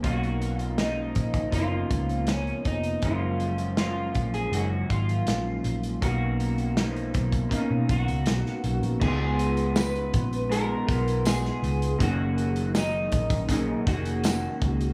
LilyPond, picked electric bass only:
\new Staff \with { instrumentName = "Picked electric bass" } { \clef bass \time 4/4 \key fis \major \tempo 4 = 80 b,,4. ais,,8 fis,,8 cis,4 eis,,8 | fis,,4. ais,,8 fis,,8 gis,,8 ais,,8 ais,,8 | b,,4. b,,8 r16 b,16 b,,16 cis,16 b,,16 r16 b,,16 ais,,16 | cis,4. ais,,4 b,,4 cis,8 |
fis,,4. ais,,4 eis,,4 cis,8 | }